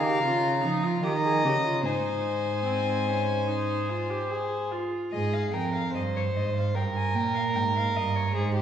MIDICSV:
0, 0, Header, 1, 5, 480
1, 0, Start_track
1, 0, Key_signature, -4, "major"
1, 0, Tempo, 810811
1, 1096, Time_signature, 4, 2, 24, 8
1, 5102, End_track
2, 0, Start_track
2, 0, Title_t, "Violin"
2, 0, Program_c, 0, 40
2, 0, Note_on_c, 0, 82, 77
2, 614, Note_off_c, 0, 82, 0
2, 622, Note_on_c, 0, 82, 79
2, 1099, Note_on_c, 0, 80, 74
2, 1108, Note_off_c, 0, 82, 0
2, 2790, Note_off_c, 0, 80, 0
2, 3033, Note_on_c, 0, 75, 68
2, 3159, Note_on_c, 0, 77, 61
2, 3168, Note_off_c, 0, 75, 0
2, 3275, Note_off_c, 0, 77, 0
2, 3279, Note_on_c, 0, 79, 62
2, 3393, Note_off_c, 0, 79, 0
2, 3402, Note_on_c, 0, 77, 56
2, 3514, Note_off_c, 0, 77, 0
2, 3524, Note_on_c, 0, 75, 57
2, 3570, Note_off_c, 0, 75, 0
2, 3649, Note_on_c, 0, 73, 54
2, 3693, Note_off_c, 0, 73, 0
2, 3769, Note_on_c, 0, 75, 60
2, 3877, Note_off_c, 0, 75, 0
2, 3884, Note_on_c, 0, 77, 59
2, 3994, Note_off_c, 0, 77, 0
2, 4002, Note_on_c, 0, 79, 65
2, 4047, Note_off_c, 0, 79, 0
2, 4124, Note_on_c, 0, 80, 60
2, 4236, Note_on_c, 0, 79, 56
2, 4244, Note_off_c, 0, 80, 0
2, 4350, Note_off_c, 0, 79, 0
2, 4354, Note_on_c, 0, 77, 61
2, 4400, Note_off_c, 0, 77, 0
2, 4473, Note_on_c, 0, 79, 62
2, 4519, Note_off_c, 0, 79, 0
2, 4600, Note_on_c, 0, 77, 64
2, 4717, Note_on_c, 0, 75, 60
2, 4725, Note_off_c, 0, 77, 0
2, 4829, Note_on_c, 0, 73, 60
2, 4837, Note_off_c, 0, 75, 0
2, 4951, Note_on_c, 0, 72, 69
2, 4960, Note_off_c, 0, 73, 0
2, 5102, Note_off_c, 0, 72, 0
2, 5102, End_track
3, 0, Start_track
3, 0, Title_t, "Violin"
3, 0, Program_c, 1, 40
3, 0, Note_on_c, 1, 77, 69
3, 615, Note_on_c, 1, 75, 74
3, 624, Note_off_c, 1, 77, 0
3, 1091, Note_off_c, 1, 75, 0
3, 1094, Note_on_c, 1, 72, 72
3, 2764, Note_off_c, 1, 72, 0
3, 3033, Note_on_c, 1, 68, 61
3, 3276, Note_on_c, 1, 70, 60
3, 3285, Note_off_c, 1, 68, 0
3, 3507, Note_off_c, 1, 70, 0
3, 3510, Note_on_c, 1, 72, 64
3, 3991, Note_on_c, 1, 70, 70
3, 4000, Note_off_c, 1, 72, 0
3, 4936, Note_off_c, 1, 70, 0
3, 4939, Note_on_c, 1, 68, 68
3, 5053, Note_off_c, 1, 68, 0
3, 5057, Note_on_c, 1, 67, 63
3, 5102, Note_off_c, 1, 67, 0
3, 5102, End_track
4, 0, Start_track
4, 0, Title_t, "Viola"
4, 0, Program_c, 2, 41
4, 19, Note_on_c, 2, 67, 69
4, 134, Note_off_c, 2, 67, 0
4, 138, Note_on_c, 2, 65, 75
4, 370, Note_off_c, 2, 65, 0
4, 374, Note_on_c, 2, 63, 75
4, 495, Note_on_c, 2, 65, 69
4, 504, Note_off_c, 2, 63, 0
4, 610, Note_off_c, 2, 65, 0
4, 614, Note_on_c, 2, 67, 68
4, 661, Note_off_c, 2, 67, 0
4, 736, Note_on_c, 2, 68, 68
4, 852, Note_off_c, 2, 68, 0
4, 856, Note_on_c, 2, 67, 68
4, 903, Note_off_c, 2, 67, 0
4, 973, Note_on_c, 2, 65, 64
4, 1091, Note_off_c, 2, 65, 0
4, 1094, Note_on_c, 2, 63, 66
4, 1566, Note_off_c, 2, 63, 0
4, 1571, Note_on_c, 2, 60, 59
4, 1817, Note_on_c, 2, 61, 55
4, 1826, Note_off_c, 2, 60, 0
4, 2058, Note_on_c, 2, 63, 61
4, 2067, Note_off_c, 2, 61, 0
4, 2306, Note_on_c, 2, 65, 55
4, 2315, Note_off_c, 2, 63, 0
4, 2426, Note_on_c, 2, 67, 56
4, 2435, Note_off_c, 2, 65, 0
4, 2549, Note_on_c, 2, 68, 62
4, 2558, Note_off_c, 2, 67, 0
4, 2790, Note_on_c, 2, 65, 59
4, 2799, Note_off_c, 2, 68, 0
4, 3031, Note_off_c, 2, 65, 0
4, 5102, End_track
5, 0, Start_track
5, 0, Title_t, "Cello"
5, 0, Program_c, 3, 42
5, 0, Note_on_c, 3, 51, 72
5, 132, Note_off_c, 3, 51, 0
5, 137, Note_on_c, 3, 49, 78
5, 377, Note_on_c, 3, 53, 77
5, 386, Note_off_c, 3, 49, 0
5, 609, Note_off_c, 3, 53, 0
5, 613, Note_on_c, 3, 51, 82
5, 852, Note_on_c, 3, 49, 74
5, 861, Note_off_c, 3, 51, 0
5, 1095, Note_on_c, 3, 44, 63
5, 1104, Note_off_c, 3, 49, 0
5, 2788, Note_off_c, 3, 44, 0
5, 3034, Note_on_c, 3, 44, 68
5, 3256, Note_off_c, 3, 44, 0
5, 3277, Note_on_c, 3, 41, 73
5, 3515, Note_on_c, 3, 43, 69
5, 3524, Note_off_c, 3, 41, 0
5, 3748, Note_off_c, 3, 43, 0
5, 3752, Note_on_c, 3, 44, 70
5, 3994, Note_on_c, 3, 43, 73
5, 4003, Note_off_c, 3, 44, 0
5, 4231, Note_on_c, 3, 46, 67
5, 4240, Note_off_c, 3, 43, 0
5, 4469, Note_on_c, 3, 44, 74
5, 4478, Note_off_c, 3, 46, 0
5, 4703, Note_off_c, 3, 44, 0
5, 4706, Note_on_c, 3, 43, 73
5, 4937, Note_off_c, 3, 43, 0
5, 4947, Note_on_c, 3, 44, 75
5, 5102, Note_off_c, 3, 44, 0
5, 5102, End_track
0, 0, End_of_file